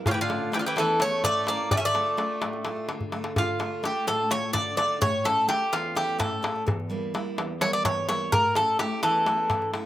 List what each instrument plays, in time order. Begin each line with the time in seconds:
0.06 steel-string acoustic guitar A2, bouzouki C#3 F4, darbuka dum
0.11 bouzouki E3 G4
0.18 bouzouki D3 F4, darbuka tek
0.29 steel-string acoustic guitar A3 C#4 E4, darbuka tek
0.52 bouzouki E3 G4, steel-string acoustic guitar A3 C#4 E4, darbuka tek
0.59 bouzouki D3 F4
0.66 bouzouki E3 G4
0.76 steel-string acoustic guitar E2, bouzouki E3 A4, darbuka tek
0.99 steel-string acoustic guitar A3 C#4 E4, bouzouki A3 C#5, darbuka tek
1.12 darbuka tek
1.24 steel-string acoustic guitar A2, bouzouki A3 D5, darbuka tek, darbuka dum
1.47 steel-string acoustic guitar A3 C#4 E4, bouzouki A#3 D5, darbuka tek
1.59 darbuka tek
1.71 steel-string acoustic guitar D3, bouzouki A3 D5, darbuka dum
1.77 bouzouki C#4 E5
1.85 bouzouki A3 D5
1.95 steel-string acoustic guitar A3 D4 F4, darbuka tek
2.06 darbuka tek
2.17 steel-string acoustic guitar A3 D4 F4, darbuka tek
2.42 steel-string acoustic guitar A2, darbuka tek
2.53 darbuka tek
2.65 steel-string acoustic guitar A3 D4 F4, darbuka tek
2.77 darbuka tek
2.89 steel-string acoustic guitar D3, darbuka tek
3.00 darbuka dum
3.12 steel-string acoustic guitar A3 D4 F4, darbuka tek
3.24 darbuka tek
3.36 steel-string acoustic guitar D3, bouzouki F4, darbuka dum
3.49 darbuka tek
3.59 steel-string acoustic guitar A3 D4 F4, darbuka tek
3.83 steel-string acoustic guitar A3 D4 F4, bouzouki G4, darbuka tek
4.07 steel-string acoustic guitar A2, bouzouki A4, darbuka tek
4.30 steel-string acoustic guitar A3 D4 F4, bouzouki C#5, darbuka tek
4.43 darbuka tek
4.53 steel-string acoustic guitar D3, bouzouki D5, darbuka tek, darbuka dum
4.76 steel-string acoustic guitar A3 D4 F4, bouzouki D5, darbuka tek
4.90 darbuka tek
5.01 steel-string acoustic guitar A2, bouzouki C#5, darbuka dum
5.14 darbuka tek
5.24 steel-string acoustic guitar A3 C#4 E4, bouzouki A4, darbuka tek
5.48 steel-string acoustic guitar A3 C#4 E4, bouzouki G4, darbuka tek
5.72 steel-string acoustic guitar E2, bouzouki F4, darbuka tek
5.95 steel-string acoustic guitar A3 C#4 E4, bouzouki G4, darbuka tek
6.09 darbuka tek
6.18 steel-string acoustic guitar A2, bouzouki A4, darbuka tek, darbuka dum
6.42 steel-string acoustic guitar A3 C#4 E4, darbuka tek
6.56 darbuka tek
6.66 steel-string acoustic guitar E2, darbuka dum
6.80 darbuka tek
6.90 steel-string acoustic guitar G3 A#3 E4
7.14 steel-string acoustic guitar G3 A#3 E4, darbuka tek
7.38 steel-string acoustic guitar E2, darbuka tek
7.61 steel-string acoustic guitar G3 A#3 E4, bouzouki C#5, darbuka tek
7.73 bouzouki D5, darbuka tek
7.85 steel-string acoustic guitar E2, bouzouki C#5, darbuka tek, darbuka dum
8.09 steel-string acoustic guitar G3 A#3 E4, bouzouki C#5, darbuka tek
8.21 darbuka tek
8.32 steel-string acoustic guitar A2, bouzouki A#4, darbuka dum
8.45 darbuka tek
8.55 steel-string acoustic guitar A3 C#4 E4, bouzouki A4, darbuka tek
8.79 steel-string acoustic guitar A3 C#4 E4, bouzouki G4, darbuka tek
8.91 darbuka tek
9.03 steel-string acoustic guitar E2, bouzouki E3 A4, darbuka tek
9.26 steel-string acoustic guitar A3 C#4 E4, darbuka tek
9.50 steel-string acoustic guitar A2, darbuka tek, darbuka dum
9.62 darbuka tek
9.74 steel-string acoustic guitar A3 C#4 E4, darbuka tek